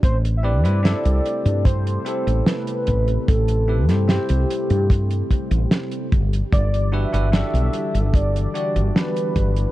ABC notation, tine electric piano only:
X:1
M:4/4
L:1/16
Q:1/4=74
K:Ador
V:1 name="Tine electric piano"
z2 [CEGB] [CEGB] [CEGA]6 [CEGA]6- | [CEGA]2 [CEGB] [CEGc] [CEGc]8- [CEGc]2 z2 | z2 [DFGB] [DFGB] [DFGA]6 [DFGd]6 |]